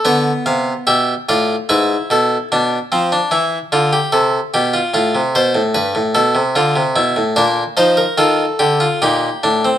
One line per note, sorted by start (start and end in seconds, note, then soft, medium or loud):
0.05 0.30 D3 medium
0.05 0.84 B3 medium
0.05 0.31 B4 medium
0.46 0.71 C3 medium
0.46 0.71 F5 medium
0.87 1.13 B2 medium
0.87 1.12 G4 medium
0.87 1.12 E5 medium
1.29 1.54 A2 medium
1.29 1.54 F4 medium
1.29 1.54 D5 medium
1.69 1.95 G#2 medium
1.69 2.48 E4 medium
1.69 1.95 B4 medium
2.10 2.35 B2 medium
2.10 2.36 A4 medium
2.52 2.77 B2 medium
2.52 2.77 D4 medium
2.92 3.17 F3 medium
2.92 3.11 C4 medium
3.12 3.32 D4 medium
3.31 3.57 E3 medium
3.31 3.57 E4 medium
3.72 3.98 D3 medium
3.72 3.92 F4 medium
3.93 4.12 G4 medium
4.12 4.38 C3 medium
4.12 4.38 A4 medium
4.54 4.79 B2 medium
4.54 4.73 G4 medium
4.74 4.93 F4 medium
4.94 5.13 A2 medium
4.94 5.19 F4 medium
5.15 5.34 C3 medium
5.35 5.54 B2 medium
5.35 5.60 C5 medium
5.55 5.74 A2 medium
5.75 5.94 G2 medium
5.75 6.00 B4 medium
5.95 6.15 A2 medium
6.15 6.35 B2 medium
6.15 6.40 A4 medium
6.35 6.55 C3 medium
6.55 6.75 D3 medium
6.55 6.81 F4 medium
6.76 6.96 C3 medium
6.96 7.16 B2 medium
6.96 7.21 E4 medium
7.16 7.36 A2 medium
7.36 7.62 A#2 medium
7.36 7.62 D4 medium
7.36 7.62 D5 medium
7.77 8.02 F3 medium
7.77 8.03 D#4 medium
7.77 7.97 C5 medium
7.97 8.18 A#4 medium
8.18 8.44 D#3 medium
8.18 8.44 F4 medium
8.18 8.99 A4 medium
8.59 8.85 D3 medium
8.59 8.80 G4 medium
8.80 9.01 F4 medium
9.02 9.28 A#2 medium
9.02 9.28 D#4 medium
9.02 9.78 G4 medium
9.43 9.69 A2 medium
9.43 9.64 D4 medium
9.65 9.78 C4 medium